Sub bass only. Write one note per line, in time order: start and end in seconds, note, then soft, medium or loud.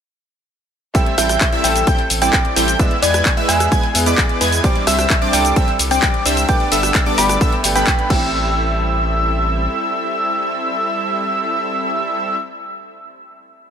1.18 1.37 A1 loud
1.64 1.83 A1 medium
2.10 2.29 A1 medium
2.56 2.76 A1 medium
3.03 3.22 E2 loud
3.49 3.68 E2 loud
3.95 4.14 E2 medium
4.41 4.60 E2 medium
4.87 5.06 C2 loud
5.33 5.53 C2 loud
5.79 5.99 C2 medium
6.26 6.45 C2 medium
6.72 6.91 G1 medium
7.18 7.37 G1 loud
7.64 7.83 G1 medium
8.10 9.68 A1 loud